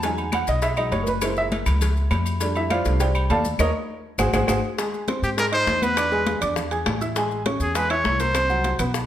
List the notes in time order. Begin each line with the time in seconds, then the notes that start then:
Already playing: E2
0.03 F#3 G#3 D#4 G#5, cowbell, high conga, low agogo, maracas
0.18 high conga, low agogo, maracas
0.32 F#5, cowbell, high conga, low timbale, low agogo, claves, maracas
0.47 B1 D#5, cowbell, high conga, maracas
0.62 E5, cowbell, high conga, low agogo, maracas
0.77 F#3 G#3 D#4 D#5, high conga, low agogo, claves, maracas
0.92 F#1 C#5, cowbell, high conga, low timbale, low agogo, maracas
1.03 A#4, high conga, maracas
1.08 B4
1.21 G#3 A#3 E4 C5, cowbell, high conga, low agogo, claves, maracas
1.36 E5, high conga, maracas
1.51 cowbell, high conga, low timbale, low agogo, maracas
1.66 C#2, cowbell, high conga, low conga, low agogo, claves, maracas
1.81 cowbell, high conga, low conga, low agogo, maracas
1.95 high conga, maracas
2.10 F2, cowbell, high conga, low timbale, low agogo, claves, maracas
2.26 low agogo, maracas
2.40 G3 A3 D4, cowbell, low agogo, maracas
2.55 E4 E5, high conga, low agogo, maracas
2.70 F4 C5 D5 F5, cowbell, high conga, low timbale, low agogo, claves, maracas
2.85 C2 G3 A3 D4, cowbell, high conga, maracas
3.00 G4 C5 D5 G5, cowbell, high conga, low agogo, maracas
3.15 high conga, low agogo, claves, maracas
3.30 D#2 A4 D5 F5 A5, cowbell, high conga, low timbale, low agogo, maracas
3.45 high conga, maracas
3.59 D#2 A#4 C#5 D#5, cowbell, high conga, high timbale, claves, maracas
4.18 G#1 F#4 G#4 C5, cowbell, high conga, high timbale, claves, maracas
4.33 G#1 F#4 G#4 C5, cowbell, high conga, high timbale, claves, maracas
4.47 G#1 F#4 G#4 C5, cowbell, high conga, high timbale, claves, maracas
4.78 G#3 G#4 G#5, high bongo, high conga, high timbale, maracas
4.93 high conga, maracas
5.08 C4 C5 C6, high bongo, high conga, high timbale, low timbale, claves, maracas
5.22 G#2 G4, high conga, maracas
5.37 G#3 G#4 A#4 G#5, high bongo, high conga, high timbale, maracas
5.52 D#4 C5 D#5 D#6, high conga, high timbale, claves, maracas
5.67 E2, high bongo, low bongo, high conga, low timbale, maracas
5.82 B3 B4 B5, high conga, high timbale, maracas
5.96 D4 D5 D6, high bongo, high conga, high timbale, claves, maracas
6.12 G#3 G#4 G#5, high bongo, high conga, maracas
6.27 high bongo, high conga, high timbale, low timbale, maracas
6.41 E2 D4 D5 D6, high bongo, low conga, high timbale, claves, maracas
6.56 high bongo, high conga, low conga, maracas
6.71 G#4 G#5 G#6, high conga, high timbale, maracas
6.86 A1, high bongo, low bongo, high conga, high timbale, low timbale, claves, maracas
7.01 E4 E5 E6, high bongo, high conga, maracas
7.15 G#3 G#4 G#5, high bongo, high conga, high timbale, maracas
7.30 high conga, maracas
7.46 C#4 C#5 C#6, high bongo, high conga, high timbale, low timbale, claves, maracas
7.60 E2 G#4, high conga, maracas
7.75 G#3 G#4 B4 G#5, high bongo, high conga, high timbale, maracas
7.90 E4 C#5 E5 E6, high conga, high timbale, claves, maracas
8.04 C2, high bongo, low bongo, high conga, low timbale, maracas
8.20 A#3 A#4 C5 A#5, high conga, high timbale, maracas
8.34 C4 C5 C6, high bongo, high conga, high timbale, claves, maracas
8.49 F#3 F#4 F#5, high bongo, high conga, maracas
8.64 high bongo, high conga, high timbale, low timbale, maracas
8.79 B1 B3 B4 B5, high bongo, low conga, high timbale, claves, maracas
8.94 high bongo, high conga, maracas